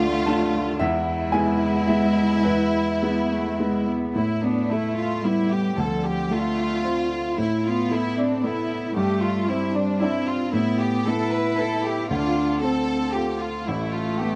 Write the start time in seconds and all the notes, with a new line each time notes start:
Already playing: D2 A3 D4 F4 D5 F5
0.26 A3 D4 F4 A5
0.79 E2 G#3 E4 E5
1.32 G#3 B3 E4 G#5
1.87 G#3 B3 E4 E5
2.43 E2 B4
3.02 G#3 B3 E4
3.31 A3
3.58 G#3 B3 E4
3.86 B3
4.16 A2 B3 E4 E5
4.42 B3 D4
4.70 A3 E4
4.97 F4
5.23 G3 B3 E4
5.52 G4
5.76 D2 F3 C4 F4 A4 D5
6.05 G4
6.30 A3 F4
6.84 C4 F4
7.36 A2 B3 E4 A4
7.65 B3 F4
7.91 A3 E4
8.17 C4 D4
8.43 B3 E4 A4
8.95 G2 A3 C4 D4 G4
9.22 F4
9.48 G3 C4 E4
9.74 D4
10.01 C4 D4 E4 D5
10.28 F4
10.52 A2 B3 E4 A4
10.80 G4
11.07 B3 E4 A4
11.33 B4
11.58 E4 A4
11.84 G4
12.09 D2 C4 D4 F4
12.62 C4 A4
13.14 F4 G4 A4
13.40 F4
13.66 A1 A3 B3 E4
13.93 F4
14.20 B3 G4